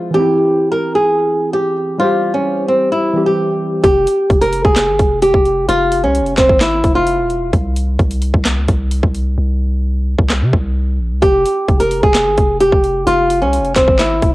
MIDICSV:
0, 0, Header, 1, 5, 480
1, 0, Start_track
1, 0, Tempo, 461538
1, 153, Time_signature, 4, 2, 24, 8
1, 14919, End_track
2, 0, Start_track
2, 0, Title_t, "Nylon-string guitar"
2, 0, Program_c, 0, 24
2, 0, Note_on_c, 0, 65, 71
2, 116, Note_off_c, 0, 65, 0
2, 147, Note_on_c, 0, 67, 91
2, 714, Note_off_c, 0, 67, 0
2, 745, Note_on_c, 0, 70, 80
2, 954, Note_off_c, 0, 70, 0
2, 989, Note_on_c, 0, 68, 74
2, 1555, Note_off_c, 0, 68, 0
2, 1594, Note_on_c, 0, 67, 80
2, 2045, Note_off_c, 0, 67, 0
2, 2074, Note_on_c, 0, 65, 95
2, 2412, Note_off_c, 0, 65, 0
2, 2431, Note_on_c, 0, 61, 65
2, 2770, Note_off_c, 0, 61, 0
2, 2791, Note_on_c, 0, 60, 81
2, 2997, Note_off_c, 0, 60, 0
2, 3035, Note_on_c, 0, 64, 74
2, 3372, Note_off_c, 0, 64, 0
2, 3392, Note_on_c, 0, 67, 70
2, 3957, Note_off_c, 0, 67, 0
2, 3989, Note_on_c, 0, 67, 93
2, 4555, Note_off_c, 0, 67, 0
2, 4591, Note_on_c, 0, 70, 87
2, 4797, Note_off_c, 0, 70, 0
2, 4832, Note_on_c, 0, 68, 75
2, 5396, Note_off_c, 0, 68, 0
2, 5432, Note_on_c, 0, 67, 88
2, 5883, Note_off_c, 0, 67, 0
2, 5913, Note_on_c, 0, 65, 108
2, 6251, Note_off_c, 0, 65, 0
2, 6276, Note_on_c, 0, 61, 78
2, 6613, Note_off_c, 0, 61, 0
2, 6629, Note_on_c, 0, 60, 84
2, 6836, Note_off_c, 0, 60, 0
2, 6874, Note_on_c, 0, 64, 72
2, 7212, Note_off_c, 0, 64, 0
2, 7230, Note_on_c, 0, 65, 75
2, 7795, Note_off_c, 0, 65, 0
2, 11669, Note_on_c, 0, 67, 93
2, 12235, Note_off_c, 0, 67, 0
2, 12270, Note_on_c, 0, 70, 87
2, 12477, Note_off_c, 0, 70, 0
2, 12512, Note_on_c, 0, 68, 74
2, 13076, Note_off_c, 0, 68, 0
2, 13110, Note_on_c, 0, 67, 86
2, 13563, Note_off_c, 0, 67, 0
2, 13591, Note_on_c, 0, 65, 109
2, 13930, Note_off_c, 0, 65, 0
2, 13954, Note_on_c, 0, 61, 78
2, 14292, Note_off_c, 0, 61, 0
2, 14309, Note_on_c, 0, 60, 84
2, 14516, Note_off_c, 0, 60, 0
2, 14553, Note_on_c, 0, 64, 75
2, 14891, Note_off_c, 0, 64, 0
2, 14919, End_track
3, 0, Start_track
3, 0, Title_t, "Synth keys"
3, 0, Program_c, 1, 88
3, 0, Control_c, 1, 64, 127
3, 0, Note_on_c, 1, 53, 66
3, 0, Note_on_c, 1, 56, 66
3, 0, Note_on_c, 1, 68, 69
3, 0, Note_on_c, 1, 72, 59
3, 106, Note_off_c, 1, 56, 0
3, 109, Note_on_c, 1, 52, 58
3, 121, Note_off_c, 1, 72, 0
3, 137, Note_off_c, 1, 68, 0
3, 167, Control_c, 1, 64, 0
3, 170, Note_on_c, 1, 60, 65
3, 174, Note_off_c, 1, 53, 0
3, 200, Note_on_c, 1, 64, 71
3, 366, Control_c, 1, 64, 127
3, 2012, Note_off_c, 1, 52, 0
3, 2043, Note_off_c, 1, 60, 0
3, 2058, Note_off_c, 1, 64, 0
3, 2059, Note_on_c, 1, 55, 59
3, 2089, Note_on_c, 1, 72, 60
3, 2119, Note_on_c, 1, 67, 75
3, 3242, Note_off_c, 1, 55, 0
3, 3257, Note_off_c, 1, 72, 0
3, 3258, Note_on_c, 1, 52, 55
3, 3272, Note_off_c, 1, 67, 0
3, 3272, Note_on_c, 1, 55, 44
3, 3288, Note_on_c, 1, 60, 47
3, 3303, Note_on_c, 1, 67, 57
3, 3985, Note_off_c, 1, 52, 0
3, 3993, Note_off_c, 1, 55, 0
3, 4000, Note_off_c, 1, 60, 0
3, 4007, Control_c, 1, 64, 0
3, 4008, Note_off_c, 1, 67, 0
3, 14919, End_track
4, 0, Start_track
4, 0, Title_t, "808-style bass"
4, 0, Program_c, 2, 38
4, 3993, Note_on_c, 2, 29, 114
4, 4223, Note_off_c, 2, 29, 0
4, 4472, Note_on_c, 2, 29, 108
4, 4818, Note_off_c, 2, 29, 0
4, 4833, Note_on_c, 2, 29, 105
4, 5073, Note_on_c, 2, 31, 100
4, 5088, Note_off_c, 2, 29, 0
4, 5187, Note_off_c, 2, 31, 0
4, 5194, Note_on_c, 2, 29, 106
4, 5539, Note_off_c, 2, 29, 0
4, 5553, Note_on_c, 2, 29, 100
4, 5899, Note_off_c, 2, 29, 0
4, 5913, Note_on_c, 2, 29, 109
4, 6273, Note_on_c, 2, 36, 99
4, 6289, Note_off_c, 2, 29, 0
4, 6452, Note_on_c, 2, 29, 97
4, 6468, Note_off_c, 2, 36, 0
4, 6624, Note_off_c, 2, 29, 0
4, 6633, Note_on_c, 2, 29, 106
4, 6746, Note_off_c, 2, 29, 0
4, 6752, Note_on_c, 2, 32, 100
4, 7098, Note_off_c, 2, 32, 0
4, 7113, Note_on_c, 2, 29, 104
4, 7473, Note_on_c, 2, 28, 97
4, 7488, Note_off_c, 2, 29, 0
4, 7815, Note_off_c, 2, 28, 0
4, 7833, Note_on_c, 2, 36, 115
4, 8294, Note_off_c, 2, 36, 0
4, 8312, Note_on_c, 2, 36, 108
4, 8658, Note_off_c, 2, 36, 0
4, 8672, Note_on_c, 2, 36, 110
4, 8913, Note_on_c, 2, 37, 97
4, 8929, Note_off_c, 2, 36, 0
4, 9027, Note_off_c, 2, 37, 0
4, 9033, Note_on_c, 2, 36, 105
4, 9379, Note_off_c, 2, 36, 0
4, 9393, Note_on_c, 2, 36, 96
4, 9739, Note_off_c, 2, 36, 0
4, 9754, Note_on_c, 2, 36, 109
4, 10560, Note_off_c, 2, 36, 0
4, 10593, Note_on_c, 2, 36, 105
4, 10833, Note_on_c, 2, 48, 100
4, 10849, Note_off_c, 2, 36, 0
4, 10947, Note_off_c, 2, 48, 0
4, 10953, Note_on_c, 2, 36, 111
4, 11433, Note_on_c, 2, 34, 97
4, 11449, Note_off_c, 2, 36, 0
4, 11553, Note_on_c, 2, 36, 97
4, 11569, Note_off_c, 2, 34, 0
4, 11667, Note_off_c, 2, 36, 0
4, 11673, Note_on_c, 2, 29, 110
4, 11903, Note_off_c, 2, 29, 0
4, 12152, Note_on_c, 2, 29, 107
4, 12498, Note_off_c, 2, 29, 0
4, 12512, Note_on_c, 2, 29, 106
4, 12753, Note_on_c, 2, 31, 97
4, 12768, Note_off_c, 2, 29, 0
4, 12867, Note_off_c, 2, 31, 0
4, 12873, Note_on_c, 2, 29, 107
4, 13218, Note_off_c, 2, 29, 0
4, 13233, Note_on_c, 2, 29, 96
4, 13578, Note_off_c, 2, 29, 0
4, 13593, Note_on_c, 2, 29, 106
4, 13953, Note_on_c, 2, 36, 99
4, 13969, Note_off_c, 2, 29, 0
4, 14133, Note_on_c, 2, 29, 97
4, 14149, Note_off_c, 2, 36, 0
4, 14304, Note_off_c, 2, 29, 0
4, 14313, Note_on_c, 2, 29, 104
4, 14428, Note_off_c, 2, 29, 0
4, 14433, Note_on_c, 2, 32, 103
4, 14778, Note_off_c, 2, 32, 0
4, 14793, Note_on_c, 2, 29, 109
4, 14919, Note_off_c, 2, 29, 0
4, 14919, End_track
5, 0, Start_track
5, 0, Title_t, "Drums"
5, 3993, Note_on_c, 9, 36, 106
5, 3994, Note_on_c, 9, 42, 74
5, 4097, Note_off_c, 9, 36, 0
5, 4098, Note_off_c, 9, 42, 0
5, 4234, Note_on_c, 9, 42, 91
5, 4338, Note_off_c, 9, 42, 0
5, 4472, Note_on_c, 9, 36, 103
5, 4473, Note_on_c, 9, 42, 46
5, 4576, Note_off_c, 9, 36, 0
5, 4577, Note_off_c, 9, 42, 0
5, 4593, Note_on_c, 9, 42, 79
5, 4697, Note_off_c, 9, 42, 0
5, 4708, Note_on_c, 9, 42, 76
5, 4812, Note_off_c, 9, 42, 0
5, 4833, Note_on_c, 9, 36, 101
5, 4937, Note_off_c, 9, 36, 0
5, 4954, Note_on_c, 9, 38, 118
5, 4954, Note_on_c, 9, 39, 93
5, 4954, Note_on_c, 9, 42, 83
5, 5058, Note_off_c, 9, 38, 0
5, 5058, Note_off_c, 9, 39, 0
5, 5058, Note_off_c, 9, 42, 0
5, 5193, Note_on_c, 9, 42, 74
5, 5194, Note_on_c, 9, 36, 92
5, 5297, Note_off_c, 9, 42, 0
5, 5298, Note_off_c, 9, 36, 0
5, 5430, Note_on_c, 9, 42, 79
5, 5534, Note_off_c, 9, 42, 0
5, 5553, Note_on_c, 9, 36, 91
5, 5657, Note_off_c, 9, 36, 0
5, 5673, Note_on_c, 9, 42, 60
5, 5777, Note_off_c, 9, 42, 0
5, 5914, Note_on_c, 9, 42, 75
5, 6018, Note_off_c, 9, 42, 0
5, 6154, Note_on_c, 9, 42, 90
5, 6258, Note_off_c, 9, 42, 0
5, 6393, Note_on_c, 9, 42, 77
5, 6497, Note_off_c, 9, 42, 0
5, 6513, Note_on_c, 9, 42, 45
5, 6617, Note_off_c, 9, 42, 0
5, 6627, Note_on_c, 9, 42, 71
5, 6632, Note_on_c, 9, 38, 94
5, 6632, Note_on_c, 9, 39, 72
5, 6633, Note_on_c, 9, 36, 97
5, 6731, Note_off_c, 9, 42, 0
5, 6736, Note_off_c, 9, 38, 0
5, 6736, Note_off_c, 9, 39, 0
5, 6737, Note_off_c, 9, 36, 0
5, 6753, Note_on_c, 9, 36, 99
5, 6857, Note_off_c, 9, 36, 0
5, 6872, Note_on_c, 9, 39, 96
5, 6873, Note_on_c, 9, 38, 116
5, 6873, Note_on_c, 9, 42, 84
5, 6976, Note_off_c, 9, 39, 0
5, 6977, Note_off_c, 9, 38, 0
5, 6977, Note_off_c, 9, 42, 0
5, 7111, Note_on_c, 9, 42, 74
5, 7113, Note_on_c, 9, 36, 95
5, 7215, Note_off_c, 9, 42, 0
5, 7217, Note_off_c, 9, 36, 0
5, 7350, Note_on_c, 9, 42, 81
5, 7454, Note_off_c, 9, 42, 0
5, 7592, Note_on_c, 9, 42, 61
5, 7696, Note_off_c, 9, 42, 0
5, 7833, Note_on_c, 9, 36, 104
5, 7833, Note_on_c, 9, 42, 74
5, 7937, Note_off_c, 9, 36, 0
5, 7937, Note_off_c, 9, 42, 0
5, 8074, Note_on_c, 9, 42, 90
5, 8178, Note_off_c, 9, 42, 0
5, 8312, Note_on_c, 9, 36, 105
5, 8312, Note_on_c, 9, 42, 47
5, 8416, Note_off_c, 9, 36, 0
5, 8416, Note_off_c, 9, 42, 0
5, 8432, Note_on_c, 9, 42, 80
5, 8536, Note_off_c, 9, 42, 0
5, 8546, Note_on_c, 9, 42, 74
5, 8650, Note_off_c, 9, 42, 0
5, 8672, Note_on_c, 9, 36, 98
5, 8776, Note_off_c, 9, 36, 0
5, 8792, Note_on_c, 9, 39, 93
5, 8793, Note_on_c, 9, 38, 116
5, 8793, Note_on_c, 9, 42, 85
5, 8896, Note_off_c, 9, 39, 0
5, 8897, Note_off_c, 9, 38, 0
5, 8897, Note_off_c, 9, 42, 0
5, 9031, Note_on_c, 9, 42, 73
5, 9033, Note_on_c, 9, 36, 91
5, 9135, Note_off_c, 9, 42, 0
5, 9137, Note_off_c, 9, 36, 0
5, 9270, Note_on_c, 9, 42, 81
5, 9374, Note_off_c, 9, 42, 0
5, 9393, Note_on_c, 9, 36, 96
5, 9497, Note_off_c, 9, 36, 0
5, 9512, Note_on_c, 9, 42, 61
5, 9616, Note_off_c, 9, 42, 0
5, 10593, Note_on_c, 9, 36, 96
5, 10697, Note_off_c, 9, 36, 0
5, 10713, Note_on_c, 9, 38, 116
5, 10713, Note_on_c, 9, 39, 92
5, 10817, Note_off_c, 9, 38, 0
5, 10817, Note_off_c, 9, 39, 0
5, 10953, Note_on_c, 9, 36, 92
5, 11057, Note_off_c, 9, 36, 0
5, 11673, Note_on_c, 9, 36, 108
5, 11673, Note_on_c, 9, 42, 75
5, 11777, Note_off_c, 9, 36, 0
5, 11777, Note_off_c, 9, 42, 0
5, 11914, Note_on_c, 9, 42, 90
5, 12018, Note_off_c, 9, 42, 0
5, 12152, Note_on_c, 9, 36, 105
5, 12152, Note_on_c, 9, 42, 47
5, 12256, Note_off_c, 9, 36, 0
5, 12256, Note_off_c, 9, 42, 0
5, 12273, Note_on_c, 9, 42, 77
5, 12377, Note_off_c, 9, 42, 0
5, 12387, Note_on_c, 9, 42, 74
5, 12491, Note_off_c, 9, 42, 0
5, 12512, Note_on_c, 9, 36, 96
5, 12616, Note_off_c, 9, 36, 0
5, 12632, Note_on_c, 9, 38, 117
5, 12632, Note_on_c, 9, 39, 97
5, 12632, Note_on_c, 9, 42, 82
5, 12736, Note_off_c, 9, 38, 0
5, 12736, Note_off_c, 9, 39, 0
5, 12736, Note_off_c, 9, 42, 0
5, 12871, Note_on_c, 9, 42, 73
5, 12873, Note_on_c, 9, 36, 93
5, 12975, Note_off_c, 9, 42, 0
5, 12977, Note_off_c, 9, 36, 0
5, 13109, Note_on_c, 9, 42, 80
5, 13213, Note_off_c, 9, 42, 0
5, 13233, Note_on_c, 9, 36, 93
5, 13337, Note_off_c, 9, 36, 0
5, 13352, Note_on_c, 9, 42, 60
5, 13456, Note_off_c, 9, 42, 0
5, 13593, Note_on_c, 9, 42, 76
5, 13697, Note_off_c, 9, 42, 0
5, 13834, Note_on_c, 9, 42, 91
5, 13938, Note_off_c, 9, 42, 0
5, 14073, Note_on_c, 9, 42, 75
5, 14177, Note_off_c, 9, 42, 0
5, 14193, Note_on_c, 9, 42, 45
5, 14297, Note_off_c, 9, 42, 0
5, 14307, Note_on_c, 9, 42, 73
5, 14312, Note_on_c, 9, 38, 94
5, 14312, Note_on_c, 9, 39, 75
5, 14313, Note_on_c, 9, 36, 93
5, 14411, Note_off_c, 9, 42, 0
5, 14416, Note_off_c, 9, 38, 0
5, 14416, Note_off_c, 9, 39, 0
5, 14417, Note_off_c, 9, 36, 0
5, 14433, Note_on_c, 9, 36, 101
5, 14537, Note_off_c, 9, 36, 0
5, 14553, Note_on_c, 9, 38, 118
5, 14553, Note_on_c, 9, 39, 96
5, 14553, Note_on_c, 9, 42, 82
5, 14657, Note_off_c, 9, 38, 0
5, 14657, Note_off_c, 9, 39, 0
5, 14657, Note_off_c, 9, 42, 0
5, 14792, Note_on_c, 9, 42, 72
5, 14793, Note_on_c, 9, 36, 93
5, 14896, Note_off_c, 9, 42, 0
5, 14897, Note_off_c, 9, 36, 0
5, 14919, End_track
0, 0, End_of_file